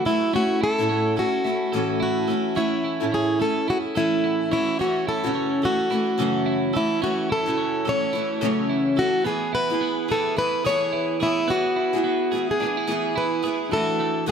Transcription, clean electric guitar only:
Already playing: F#3 A3 E4
0.06 A4
0.34 C#4
0.61 E4
0.89 C#4
1.17 A4
1.45 E4
1.72 A4
2.00 E4
2.28 A4
2.56 C#4
2.84 E4
3.12 C#4
3.40 A4
3.68 E4
3.95 A4
4.24 E4
4.52 C#4
4.79 C#4
5.07 E4
5.35 C#4
5.63 A4
5.91 E4
6.19 A4
6.46 E4
6.74 A4
7.02 C#4
7.30 E4
7.57 C#4
7.85 A4
8.13 E4
8.41 A4
8.69 E4
8.97 A4
9.24 B3
9.53 E4
9.81 B3
10.09 G#4
10.37 E4
10.65 G#4
10.93 E4
11.20 G#4
11.48 B3
11.76 E4
12.04 B3
12.32 G#4
12.60 D4
12.77 E4
12.88 G#4
13.16 E4
13.44 G#4
13.72 E3
14.00 A3
14.28 F#4

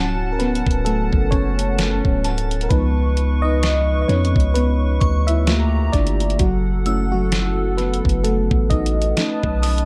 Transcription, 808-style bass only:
Already playing: D1
0.66 D1
1.13 F#1
2.05 D1
2.71 C#2
4.09 F2
4.36 C#2
5.01 D2
5.94 G1
6.40 F#1
8.05 F#1
8.51 A1
9.44 B1

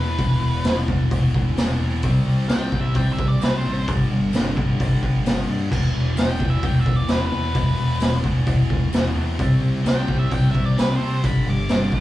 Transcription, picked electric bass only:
Already playing: E2
0.18 E1
0.41 E1
0.64 E1
0.89 E1
1.12 E1
1.34 E1
1.56 E1
1.80 E2
2.03 C2
2.27 C2
2.49 C2
2.72 C2
2.95 C2
3.18 C2
3.42 C2
3.65 A1
3.88 G1
4.11 G1
4.34 G1
4.58 G1
4.80 G1
5.03 G1
5.25 G1
5.49 G2
5.72 E1
5.95 E1
6.18 E1
6.40 E1
6.63 E1
6.86 E1
7.09 E1
7.32 E2
7.55 E1
7.78 E1
8.01 E1
8.24 E1
8.47 E1
8.70 E1
8.93 E1
9.15 E2
9.39 C2
9.61 C2
9.84 C2
10.08 C2
10.31 C2
10.54 C2
10.79 C2
11.00 C3
11.24 G1
11.46 G1
11.69 G1
11.92 G1

